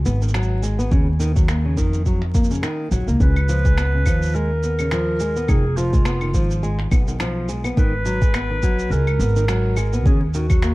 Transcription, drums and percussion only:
0.06 shaker
0.22 shaker
0.28 shaker
0.34 finger snap, shaker
0.42 shaker
0.63 shaker
0.79 shaker
0.91 kick, shaker
1.20 shaker
1.36 kick, shaker
1.48 finger snap, shaker
1.77 kick, shaker
1.93 shaker
2.06 kick, shaker
2.22 finger snap
2.34 kick, shaker
2.44 shaker
2.50 shaker
2.54 shaker
2.63 finger snap, shaker
2.92 shaker
3.08 shaker
3.20 kick, shaker
3.36 claves
3.49 shaker
3.65 kick, shaker
3.78 finger snap, shaker
4.06 kick, claves, shaker
4.22 shaker
4.24 shaker
4.28 shaker
4.31 shaker
4.32 shaker
4.35 shaker
4.63 shaker
4.79 claves, shaker
4.91 finger snap, shaker
5.20 shaker
5.36 shaker
5.48 kick, claves, shaker
5.77 shaker
5.93 kick, shaker
6.05 finger snap, shaker
6.21 claves
6.34 kick, shaker
6.51 shaker
6.63 shaker
6.79 finger snap
6.91 kick, claves, shaker
7.08 shaker
7.20 finger snap, shaker
7.49 shaker
7.64 claves, shaker
7.77 kick, shaker
8.06 shaker
8.22 kick, shaker
8.34 finger snap, claves, shaker
8.63 kick, shaker
8.79 shaker
8.91 shaker
9.07 claves
9.20 shaker
9.36 shaker
9.48 finger snap, shaker
9.77 claves, shaker
9.93 shaker
10.06 kick, shaker
10.34 shaker
10.50 kick, claves, shaker
10.62 finger snap, shaker

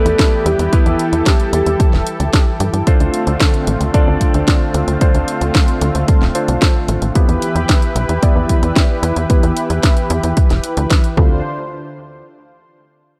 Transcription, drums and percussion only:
0.06 closed hi-hat
0.19 kick, snare, closed hi-hat
0.46 closed hi-hat
0.59 closed hi-hat
0.73 kick, closed hi-hat
0.86 closed hi-hat
0.99 closed hi-hat
1.13 closed hi-hat
1.26 kick, snare, closed hi-hat
1.40 closed hi-hat
1.53 closed hi-hat
1.66 closed hi-hat
1.80 kick, closed hi-hat
1.93 snare
2.07 closed hi-hat
2.20 closed hi-hat
2.33 kick, snare, closed hi-hat
2.60 closed hi-hat
2.74 closed hi-hat
2.87 kick, closed hi-hat
3.00 closed hi-hat
3.14 closed hi-hat
3.27 closed hi-hat
3.40 kick, snare, closed hi-hat
3.54 closed hi-hat
3.67 closed hi-hat
3.81 closed hi-hat
3.94 kick, closed hi-hat
4.21 kick, closed hi-hat
4.34 closed hi-hat
4.48 kick, snare, closed hi-hat
4.74 closed hi-hat
4.88 closed hi-hat
5.01 kick, closed hi-hat
5.15 closed hi-hat
5.28 closed hi-hat
5.41 closed hi-hat
5.55 kick, snare, closed hi-hat
5.68 closed hi-hat
5.81 closed hi-hat
5.95 closed hi-hat
6.08 kick, closed hi-hat
6.22 snare
6.35 closed hi-hat
6.48 closed hi-hat
6.62 kick, snare, closed hi-hat
6.88 closed hi-hat
7.02 closed hi-hat
7.15 kick, closed hi-hat
7.29 closed hi-hat
7.42 closed hi-hat
7.56 closed hi-hat
7.69 kick, snare, closed hi-hat
7.82 closed hi-hat
7.96 closed hi-hat
8.09 closed hi-hat
8.23 kick, closed hi-hat
8.49 kick, closed hi-hat
8.63 closed hi-hat
8.76 kick, snare, closed hi-hat
9.03 closed hi-hat
9.16 closed hi-hat
9.30 kick, closed hi-hat
9.43 closed hi-hat
9.57 closed hi-hat
9.70 closed hi-hat
9.83 kick, snare, closed hi-hat
9.97 closed hi-hat
10.10 closed hi-hat
10.23 closed hi-hat
10.37 kick, closed hi-hat
10.50 snare, closed hi-hat
10.64 closed hi-hat
10.77 closed hi-hat
10.90 kick, snare, closed hi-hat
11.04 closed hi-hat
11.17 kick

